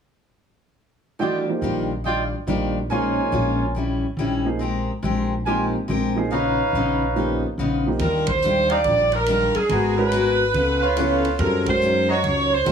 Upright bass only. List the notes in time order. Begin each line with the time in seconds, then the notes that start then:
1.61 A#1
2.47 A#1
3.32 A#1
4.17 A#1
5.02 A#1
5.88 A#1
6.73 A#1
7.58 A#1
8.00 D#2
8.85 A#1
9.55 muted upright bass stroke
9.69 G#1
10.54 C#2
11.39 F#2
12.23 C#2
12.66 B1